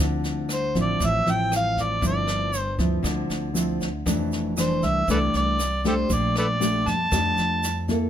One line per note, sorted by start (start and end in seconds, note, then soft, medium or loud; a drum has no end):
0.00 0.71 D2 medium
0.00 0.98 D3 medium
0.00 0.47 F3 soft
0.00 0.48 C4 medium
0.00 0.48 E4 medium
0.24 snare soft
0.24 shaker soft
0.49 cross-stick medium
0.49 snare soft
0.49 shaker medium
0.53 0.75 C5 medium
0.75 0.99 A1 medium
0.75 1.22 F3 medium
0.75 1.22 C4 medium
0.75 1.22 E4 medium
0.75 kick soft
0.75 snare soft
0.75 shaker soft
0.81 1.07 D5 medium
1.00 1.24 A1 medium
1.00 2.00 A2 medium
1.00 kick medium
1.00 snare soft
1.00 shaker medium
1.06 1.32 E5 medium
1.26 1.99 A1 medium
1.26 1.98 F3 medium
1.26 1.99 C4 medium
1.26 1.99 E4 medium
1.26 snare soft
1.26 shaker soft
1.31 1.54 G5 medium
1.52 cross-stick medium
1.52 snare soft
1.52 shaker medium
1.56 1.84 F5 medium
1.77 kick soft
1.77 snare soft
1.77 shaker soft
1.82 2.05 D5 medium
2.01 2.75 G1 medium
2.01 3.01 G2 medium
2.01 2.53 F3 soft
2.01 2.53 C4 soft
2.01 2.53 E4 medium
2.01 kick medium
2.01 snare soft
2.01 shaker medium
2.07 2.59 D5 medium
2.27 cross-stick medium
2.27 snare soft
2.27 shaker soft
2.53 snare soft
2.53 shaker medium
2.59 2.77 C5 medium
2.79 3.02 D2 medium
2.79 3.51 F3 medium
2.79 3.51 C4 medium
2.79 3.52 E4 medium
2.79 kick soft
2.79 snare soft
2.79 shaker soft
3.03 3.28 D2 medium
3.03 4.03 D3 medium
3.03 kick medium
3.03 cross-stick medium
3.03 snare soft
3.03 shaker medium
3.30 4.02 D2 medium
3.30 snare soft
3.30 shaker soft
3.54 3.87 F3 medium
3.54 3.88 C4 medium
3.54 3.88 E4 medium
3.54 snare soft
3.54 shaker medium
3.81 kick soft
3.81 snare soft
3.81 shaker soft
4.06 4.79 F1 medium
4.06 5.05 F2 medium
4.06 4.53 E3 medium
4.06 4.53 A3 medium
4.06 4.53 D4 soft
4.06 kick medium
4.06 cross-stick medium
4.06 snare soft
4.06 shaker medium
4.32 snare soft
4.32 shaker soft
4.57 5.04 E3 medium
4.57 5.04 A3 medium
4.57 5.04 D4 medium
4.57 4.86 C5 medium
4.57 cross-stick medium
4.57 snare soft
4.57 shaker medium
4.83 5.06 C2 medium
4.83 5.09 E5 medium
4.83 kick soft
4.83 snare soft
4.83 shaker soft
5.08 5.32 C2 medium
5.08 6.08 C3 medium
5.08 5.59 E3 soft
5.08 5.59 A3 medium
5.08 5.59 D4 medium
5.08 5.18 A4 medium
5.08 5.18 B4 medium
5.08 5.33 D5 medium
5.08 kick medium
5.08 snare soft
5.08 shaker medium
5.34 6.06 C2 medium
5.34 5.82 D5 medium
5.34 snare soft
5.34 shaker soft
5.59 cross-stick medium
5.59 snare soft
5.59 shaker medium
5.84 6.57 A3 medium
5.84 6.57 D4 medium
5.84 6.57 G4 medium
5.84 5.94 G4 medium
5.84 5.95 A4 medium
5.84 6.14 C5 medium
5.84 kick soft
5.84 snare soft
5.84 shaker soft
6.10 6.82 A#1 medium
6.10 7.10 A#2 medium
6.10 6.37 D5 medium
6.10 kick medium
6.10 snare soft
6.10 shaker medium
6.36 6.46 A4 medium
6.36 6.47 B4 medium
6.36 6.90 D5 medium
6.36 cross-stick medium
6.36 snare soft
6.36 shaker soft
6.60 6.93 A3 medium
6.60 6.93 D4 medium
6.60 6.94 G4 medium
6.60 snare soft
6.60 shaker medium
6.86 7.10 F2 medium
6.86 7.89 A5 loud
6.86 kick soft
6.86 snare soft
6.86 shaker soft
7.11 8.10 F2 medium
7.11 7.36 F2 medium
7.11 7.62 A3 medium
7.11 7.63 D4 medium
7.11 7.63 G4 medium
7.11 kick medium
7.11 cross-stick medium
7.11 snare soft
7.11 shaker medium
7.37 8.09 F2 medium
7.37 snare soft
7.37 shaker soft
7.63 snare soft
7.63 shaker medium
7.88 8.10 A#3 medium
7.88 8.10 E4 medium
7.88 8.10 A4 medium
7.88 kick soft
7.88 snare soft
7.88 shaker soft